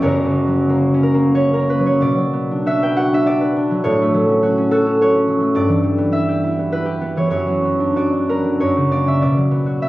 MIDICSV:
0, 0, Header, 1, 2, 480
1, 0, Start_track
1, 0, Key_signature, 2, "minor"
1, 0, Tempo, 662252
1, 33, Time_signature, 3, 2, 24, 8
1, 1472, Tempo, 621118
1, 1952, Tempo, 579151
1, 5312, Tempo, 626959
1, 7748, End_track
2, 0, Start_track
2, 0, Title_t, "Harp"
2, 0, Program_c, 0, 46
2, 0, Note_on_c, 0, 61, 65
2, 0, Note_on_c, 0, 74, 89
2, 13, Note_on_c, 0, 30, 75
2, 17, Note_on_c, 0, 73, 92
2, 21, Note_on_c, 0, 42, 81
2, 24, Note_on_c, 0, 66, 65
2, 29, Note_on_c, 0, 70, 67
2, 116, Note_off_c, 0, 74, 0
2, 180, Note_on_c, 0, 49, 56
2, 340, Note_on_c, 0, 54, 57
2, 502, Note_on_c, 0, 58, 64
2, 673, Note_off_c, 0, 61, 0
2, 682, Note_on_c, 0, 61, 61
2, 738, Note_off_c, 0, 70, 0
2, 747, Note_on_c, 0, 70, 81
2, 818, Note_off_c, 0, 58, 0
2, 827, Note_on_c, 0, 58, 60
2, 969, Note_off_c, 0, 73, 0
2, 972, Note_off_c, 0, 61, 0
2, 977, Note_on_c, 0, 73, 92
2, 981, Note_on_c, 0, 61, 65
2, 1104, Note_off_c, 0, 70, 0
2, 1113, Note_on_c, 0, 70, 81
2, 1140, Note_off_c, 0, 58, 0
2, 1149, Note_on_c, 0, 58, 57
2, 1229, Note_on_c, 0, 71, 87
2, 1291, Note_off_c, 0, 54, 0
2, 1300, Note_on_c, 0, 54, 61
2, 1319, Note_off_c, 0, 70, 0
2, 1341, Note_off_c, 0, 73, 0
2, 1349, Note_on_c, 0, 73, 80
2, 1434, Note_off_c, 0, 71, 0
2, 1454, Note_on_c, 0, 47, 67
2, 1463, Note_on_c, 0, 74, 93
2, 1481, Note_off_c, 0, 30, 0
2, 1482, Note_off_c, 0, 49, 0
2, 1483, Note_off_c, 0, 61, 0
2, 1485, Note_off_c, 0, 42, 0
2, 1488, Note_off_c, 0, 58, 0
2, 1554, Note_off_c, 0, 73, 0
2, 1577, Note_off_c, 0, 54, 0
2, 1587, Note_on_c, 0, 54, 52
2, 1706, Note_on_c, 0, 59, 54
2, 1846, Note_on_c, 0, 62, 53
2, 1950, Note_off_c, 0, 66, 0
2, 1960, Note_on_c, 0, 66, 61
2, 1966, Note_on_c, 0, 76, 94
2, 2094, Note_on_c, 0, 71, 57
2, 2099, Note_on_c, 0, 79, 82
2, 2168, Note_off_c, 0, 76, 0
2, 2203, Note_off_c, 0, 66, 0
2, 2210, Note_on_c, 0, 66, 57
2, 2213, Note_on_c, 0, 78, 87
2, 2293, Note_off_c, 0, 79, 0
2, 2340, Note_off_c, 0, 62, 0
2, 2350, Note_on_c, 0, 62, 56
2, 2357, Note_on_c, 0, 76, 82
2, 2407, Note_off_c, 0, 78, 0
2, 2448, Note_off_c, 0, 74, 0
2, 2450, Note_off_c, 0, 66, 0
2, 2457, Note_on_c, 0, 66, 61
2, 2461, Note_on_c, 0, 74, 91
2, 2540, Note_off_c, 0, 76, 0
2, 2569, Note_off_c, 0, 71, 0
2, 2579, Note_on_c, 0, 71, 57
2, 2698, Note_off_c, 0, 62, 0
2, 2708, Note_on_c, 0, 62, 62
2, 2818, Note_off_c, 0, 54, 0
2, 2828, Note_on_c, 0, 54, 54
2, 2929, Note_off_c, 0, 47, 0
2, 2934, Note_off_c, 0, 59, 0
2, 2936, Note_on_c, 0, 73, 100
2, 2940, Note_on_c, 0, 45, 78
2, 2950, Note_off_c, 0, 71, 0
2, 2950, Note_off_c, 0, 74, 0
2, 2955, Note_off_c, 0, 62, 0
2, 3084, Note_on_c, 0, 57, 60
2, 3175, Note_off_c, 0, 54, 0
2, 3184, Note_on_c, 0, 54, 58
2, 3304, Note_on_c, 0, 61, 59
2, 3413, Note_off_c, 0, 66, 0
2, 3423, Note_on_c, 0, 66, 70
2, 3537, Note_off_c, 0, 61, 0
2, 3547, Note_on_c, 0, 61, 67
2, 3656, Note_off_c, 0, 66, 0
2, 3659, Note_on_c, 0, 69, 88
2, 3666, Note_on_c, 0, 66, 64
2, 3775, Note_off_c, 0, 61, 0
2, 3785, Note_on_c, 0, 61, 59
2, 3902, Note_off_c, 0, 73, 0
2, 3906, Note_off_c, 0, 66, 0
2, 3912, Note_on_c, 0, 73, 99
2, 3916, Note_on_c, 0, 66, 69
2, 4011, Note_off_c, 0, 61, 0
2, 4021, Note_on_c, 0, 61, 61
2, 4119, Note_off_c, 0, 54, 0
2, 4129, Note_on_c, 0, 54, 64
2, 4221, Note_off_c, 0, 57, 0
2, 4231, Note_on_c, 0, 57, 60
2, 4352, Note_on_c, 0, 43, 74
2, 4359, Note_on_c, 0, 74, 102
2, 4364, Note_off_c, 0, 57, 0
2, 4369, Note_off_c, 0, 69, 0
2, 4370, Note_off_c, 0, 54, 0
2, 4372, Note_off_c, 0, 45, 0
2, 4374, Note_off_c, 0, 61, 0
2, 4378, Note_off_c, 0, 73, 0
2, 4380, Note_off_c, 0, 66, 0
2, 4464, Note_on_c, 0, 52, 57
2, 4589, Note_on_c, 0, 55, 58
2, 4710, Note_on_c, 0, 59, 59
2, 4825, Note_on_c, 0, 64, 66
2, 4831, Note_on_c, 0, 76, 96
2, 4961, Note_on_c, 0, 67, 57
2, 5079, Note_off_c, 0, 64, 0
2, 5089, Note_on_c, 0, 64, 55
2, 5168, Note_off_c, 0, 74, 0
2, 5204, Note_off_c, 0, 59, 0
2, 5214, Note_on_c, 0, 59, 53
2, 5323, Note_off_c, 0, 64, 0
2, 5325, Note_on_c, 0, 71, 84
2, 5333, Note_on_c, 0, 64, 53
2, 5415, Note_off_c, 0, 67, 0
2, 5424, Note_on_c, 0, 67, 54
2, 5538, Note_off_c, 0, 59, 0
2, 5547, Note_on_c, 0, 59, 51
2, 5656, Note_off_c, 0, 52, 0
2, 5663, Note_on_c, 0, 52, 44
2, 5669, Note_on_c, 0, 73, 70
2, 5764, Note_off_c, 0, 73, 0
2, 5769, Note_on_c, 0, 42, 58
2, 5773, Note_on_c, 0, 73, 79
2, 5795, Note_off_c, 0, 67, 0
2, 5799, Note_off_c, 0, 52, 0
2, 5801, Note_off_c, 0, 43, 0
2, 5802, Note_off_c, 0, 55, 0
2, 5803, Note_off_c, 0, 76, 0
2, 5807, Note_off_c, 0, 64, 0
2, 5896, Note_on_c, 0, 54, 44
2, 6024, Note_off_c, 0, 59, 0
2, 6033, Note_on_c, 0, 59, 44
2, 6147, Note_on_c, 0, 62, 44
2, 6272, Note_on_c, 0, 66, 51
2, 6279, Note_on_c, 0, 74, 61
2, 6391, Note_off_c, 0, 62, 0
2, 6400, Note_on_c, 0, 62, 43
2, 6519, Note_off_c, 0, 59, 0
2, 6527, Note_on_c, 0, 59, 43
2, 6528, Note_on_c, 0, 70, 60
2, 6627, Note_off_c, 0, 54, 0
2, 6636, Note_on_c, 0, 54, 42
2, 6755, Note_off_c, 0, 73, 0
2, 6761, Note_off_c, 0, 42, 0
2, 6764, Note_on_c, 0, 73, 66
2, 6770, Note_on_c, 0, 42, 54
2, 6785, Note_off_c, 0, 62, 0
2, 6787, Note_off_c, 0, 59, 0
2, 6787, Note_off_c, 0, 71, 0
2, 6787, Note_off_c, 0, 74, 0
2, 6889, Note_on_c, 0, 49, 38
2, 7001, Note_on_c, 0, 58, 43
2, 7004, Note_on_c, 0, 74, 69
2, 7114, Note_on_c, 0, 61, 44
2, 7128, Note_on_c, 0, 76, 64
2, 7202, Note_off_c, 0, 74, 0
2, 7235, Note_on_c, 0, 47, 57
2, 7238, Note_on_c, 0, 74, 68
2, 7253, Note_off_c, 0, 61, 0
2, 7256, Note_off_c, 0, 58, 0
2, 7257, Note_off_c, 0, 73, 0
2, 7259, Note_off_c, 0, 49, 0
2, 7260, Note_off_c, 0, 42, 0
2, 7261, Note_off_c, 0, 70, 0
2, 7323, Note_off_c, 0, 76, 0
2, 7342, Note_off_c, 0, 54, 0
2, 7351, Note_on_c, 0, 54, 43
2, 7460, Note_on_c, 0, 59, 45
2, 7565, Note_off_c, 0, 66, 0
2, 7575, Note_on_c, 0, 66, 44
2, 7688, Note_off_c, 0, 59, 0
2, 7695, Note_on_c, 0, 59, 45
2, 7697, Note_on_c, 0, 76, 71
2, 7748, Note_off_c, 0, 47, 0
2, 7748, Note_off_c, 0, 54, 0
2, 7748, Note_off_c, 0, 59, 0
2, 7748, Note_off_c, 0, 66, 0
2, 7748, Note_off_c, 0, 74, 0
2, 7748, Note_off_c, 0, 76, 0
2, 7748, End_track
0, 0, End_of_file